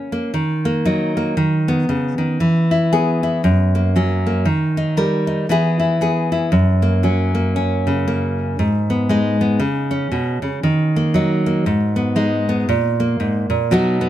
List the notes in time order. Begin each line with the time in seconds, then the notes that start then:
Already playing: A#3 C#4
0.12 A#3
0.34 D#3
0.65 A#3
0.85 F#3 D#4
1.17 A#3
1.37 D#3
1.68 B3
1.89 C#3
2.18 D#3
2.40 E3
2.71 E4
2.93 B3 G#4
3.23 E4
3.44 F#2
3.75 A#3
3.96 F#3 C#4
4.26 A#3
4.45 D#3
4.77 D#4
4.97 G3 A#4
5.27 D#4
5.49 E3 B3 E4 G#4
5.80 E4
6.01 B3 G#4
6.32 E4
6.52 F#2
6.82 A#3
7.03 F#3 C#4
7.35 A#3
7.56 C#4
7.87 C#3
8.08 A#3
8.59 G#2
8.90 B3
9.09 G#3 D#4
9.41 B3
9.60 C#3
9.91 C#4
10.12 B2
10.42 C#3
10.63 D#3
10.96 A#3
11.14 F#3 D#4
11.46 A#3
11.66 G#2
11.96 B3
12.16 G#3 D#4
12.49 B3
12.69 A#2
13.00 A#3
13.20 G#2
13.50 A#2
13.71 B2 F#3 B3 D#4 F#4
14.01 B3